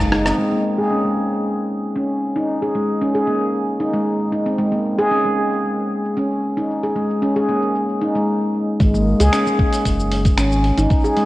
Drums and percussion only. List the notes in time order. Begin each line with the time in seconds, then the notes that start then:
0.00 shaker
0.12 cross-stick, open hi-hat
0.26 cross-stick, open hi-hat, shaker
0.39 shaker
0.53 shaker
0.79 shaker
1.05 shaker
1.31 shaker
1.44 shaker
1.57 shaker
1.84 shaker
1.96 shaker
2.10 shaker
2.36 shaker
2.49 shaker
2.63 shaker
2.89 shaker
3.01 shaker
3.42 shaker
3.54 shaker
3.68 shaker
3.94 shaker
4.07 shaker
4.21 shaker
4.47 shaker
4.60 shaker
4.73 shaker
5.00 shaker
5.12 shaker
5.26 shaker
5.52 shaker
5.65 shaker
5.79 shaker
6.05 shaker
6.18 shaker
6.31 shaker
6.58 shaker
6.70 shaker
6.84 shaker
7.10 shaker
7.22 shaker
7.36 shaker
7.62 shaker
7.75 shaker
7.89 shaker
8.15 shaker
8.80 kick, open hi-hat, shaker
8.94 shaker
9.20 open hi-hat, shaker
9.33 finger snap, open hi-hat, shaker
9.47 shaker
9.59 kick
9.73 open hi-hat, shaker
9.85 kick, open hi-hat, shaker
10.00 shaker
10.12 open hi-hat
10.25 kick, open hi-hat, shaker
10.38 finger snap, open hi-hat, shaker
10.52 shaker
10.64 open hi-hat
10.78 open hi-hat, shaker
10.90 kick, open hi-hat, shaker
11.05 shaker
11.17 open hi-hat